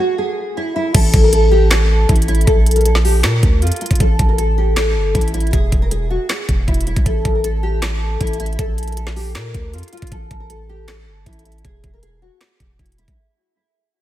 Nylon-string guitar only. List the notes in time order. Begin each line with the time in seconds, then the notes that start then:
0.00 F#4
0.18 G#4
0.57 E4
0.76 E4
0.95 A4
1.24 A#4
1.33 A4
1.51 G4
1.71 A4
2.09 E4
2.28 E4
2.47 A4
2.76 A#4
2.85 A4
3.05 G4
3.24 A#4
3.62 F4
3.81 F4
4.00 A4
4.29 A#4
4.38 A4
4.58 G4
4.77 A4
5.14 E4
5.34 E4
5.53 G#4
5.82 A#4
5.91 G#4
6.10 F#4
6.29 G#4
6.68 E4
6.87 E4
7.06 A4
7.35 A#4
7.44 A4
7.63 G4
7.83 A4
8.21 E4
8.40 E4
8.59 A4
8.88 A#4
8.97 A4
9.16 G4
9.35 A#4
9.74 F4
9.93 F4
10.12 A4
10.40 A#4
10.50 A4
10.69 G4
11.26 E4
11.46 E4
11.65 G#4
11.94 A#4
12.03 G#4
12.22 F#4
12.80 E4
12.99 E4